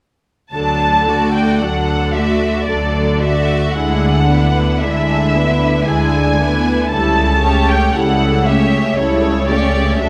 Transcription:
0.52 double bass section D2, cello section D3, viola section F#3 D4, violin section A4 A5
1.08 viola section A3 F#4, violin section F#4 D5
1.33 violin section G5
1.59 double bass section D2, cello section D3, viola section F#3 D4, violin section A4 F#5
2.13 viola section A3 F#4, violin section F#4 D5 E5
2.66 double bass section D2, cello section D3, viola section F#3 D4, violin section A4 D5
3.20 viola section A3 F#4, violin section D5 E5
3.24 violin section F#4
3.73 double bass section D2, cello section D3, viola section G#3 E4, violin section D4 G#4 F#5
4.29 viola section B3 D4, violin section E4 B4
4.79 double bass section D2, viola section G#3 E4, violin section D4 G#4 E5
4.83 cello section D3
5.34 viola section B3 D4, violin section E4 B4
5.85 double bass section D2, viola section G#3 E4, violin section D4 G#4 G#5
5.89 cello section D3
6.39 viola section B3 D4, violin section E4 B4
6.90 double bass section C#2, cello section C#3, viola section G3 E4, violin section A4 A5
7.43 viola section A3 C#4, violin section G4 C#5
7.69 violin section G5
7.94 double bass section C#2, cello section C#3, viola section G3 E4, violin section A4 F#5
8.47 viola section A3 C#4, violin section G4 C#5 E5
8.96 double bass section C#2, cello section C#3, viola section G3 E4, violin section A4 C#5
9.49 viola section A3 C#4, violin section G4 C#5 D5
9.99 double bass section D2, cello section D3, viola section F#3 D4, violin section A4 E5

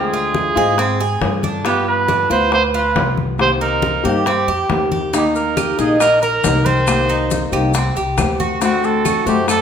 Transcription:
Already playing: upright bass D2, nylon-string guitar D3 G#3 C4 F4, cuban tres C4, trumpet G#4
0.13 cuban tres F4, high conga
0.34 high bongo, high conga
0.55 upright bass G#2, nylon-string guitar G#3 C4 F4, cuban tres G#4, high bongo, high conga
0.78 cuban tres C4, muted nylon-string guitar stroke, high bongo, high conga
1.00 cuban tres G#4, high bongo, high conga
1.21 upright bass G2, nylon-string guitar D3 C4 F4, high bongo, low bongo, high conga
1.43 cuban tres D4, high bongo, high conga
1.64 nylon-string guitar G3 B3 F4, cuban tres B3, trumpet G4, high bongo
1.87 trumpet B4, high conga
2.08 cuban tres D4, high bongo, high conga
2.30 upright bass D2, nylon-string guitar B3 F4, cuban tres B4, trumpet C5, high conga
2.52 trumpet C5, muted nylon-string guitar stroke, high bongo, high conga
2.74 cuban tres F4, trumpet B4, high conga
2.95 upright bass C2, nylon-string guitar G3 B3 F4, high bongo, low bongo, high conga
3.17 high conga
3.38 nylon-string guitar C3 D#3 A#3 C4 G4, trumpet C5, high bongo, high conga
3.61 cuban tres D#4, trumpet A#4, high conga
3.82 high bongo, high conga
4.03 upright bass G2, nylon-string guitar D#3 A#3 C4 G4, cuban tres G4, trumpet G4, high bongo, high conga
4.26 cuban tres C4, muted nylon-string guitar stroke, high bongo, high conga
4.47 upright bass F2, cuban tres G4, high bongo, high conga
4.69 upright bass D#2, nylon-string guitar D#3 A#3 C4 G4, high bongo, low bongo, high conga
4.92 cuban tres G4, high bongo, high conga
5.13 nylon-string guitar D#3 A#3 D#4 G4, cuban tres D#4, trumpet G4, high bongo, high conga, maracas
5.35 trumpet A#4, high conga, maracas
5.57 cuban tres G4, high bongo, high conga, claves, maracas
5.78 upright bass A#1, nylon-string guitar A#3 D#4 G4, trumpet G#4, cuban tres D#5, high conga, maracas
6.00 trumpet A#4, muted nylon-string guitar stroke, high bongo, high conga, claves, maracas
6.22 trumpet A#4, cuban tres A#4, high conga, maracas
6.43 upright bass C2, nylon-string guitar D#3 A#3 D#4 G4, high bongo, low bongo, high conga, maracas
6.65 cuban tres C4, trumpet C5, high conga, maracas
6.87 nylon-string guitar C3 D#3 A#3 C4 G4, high bongo, high conga, claves, maracas
7.09 cuban tres D#4, high conga, maracas
7.31 high bongo, high conga, maracas
7.52 upright bass C2, nylon-string guitar D#3 A#3 C4 G4, cuban tres G4, high bongo, high conga, claves, maracas
7.74 cuban tres C4, muted nylon-string guitar stroke, high bongo, maracas
7.96 upright bass C2, cuban tres G4, high bongo, high conga, maracas
8.18 upright bass D2, nylon-string guitar A#3 C4 G4, high bongo, low bongo, high conga, claves, maracas
8.40 cuban tres F#4, high bongo, high conga, maracas
8.61 nylon-string guitar D3 A3 C4 F#4, cuban tres C4, trumpet F#4, high bongo, high conga, maracas
8.84 trumpet A4, high conga, maracas
9.05 cuban tres F#4, high bongo, high conga, claves, maracas
9.26 upright bass F#2, nylon-string guitar A3 C4 F#4, trumpet G4, cuban tres C5, high conga, maracas
9.48 trumpet A4, muted nylon-string guitar stroke, high bongo, high conga, claves, maracas

